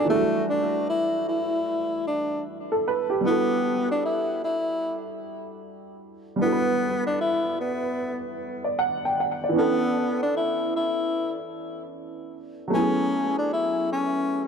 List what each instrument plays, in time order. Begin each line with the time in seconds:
Already playing: upright piano D4 F#4 A4
0.05 upright piano E3 F#3
0.10 upright piano A3 D4, tenor saxophone A3
0.14 upright piano G3 F#4
0.50 tenor saxophone D4
0.90 tenor saxophone E4
1.29 tenor saxophone E4
2.08 tenor saxophone D4
2.72 upright piano A4
2.88 upright piano B4
3.10 upright piano G4
3.21 upright piano G3 D4
3.25 tenor saxophone B3, upright piano E4 F#4
3.30 upright piano A4
3.91 tenor saxophone D4
4.06 tenor saxophone E4
4.44 tenor saxophone E4
6.36 upright piano G3 D4
6.41 tenor saxophone B3, upright piano E4 F#4
6.46 upright piano A4
6.52 upright piano B4
7.07 tenor saxophone D4
7.21 tenor saxophone E4
7.61 tenor saxophone B3
8.64 upright piano D5
8.79 upright piano F#5
9.05 upright piano G5
9.20 upright piano F#5
9.44 upright piano D5
9.49 upright piano E3 B3
9.54 upright piano C#4 D4
9.58 tenor saxophone B3, upright piano A4
10.23 tenor saxophone D4
10.37 tenor saxophone E4
10.77 tenor saxophone E4
12.68 upright piano F#3 A3
12.73 upright piano B3 E4, tenor saxophone C#4
12.78 upright piano G#4
13.38 tenor saxophone D4
13.53 tenor saxophone E4
13.93 tenor saxophone C#4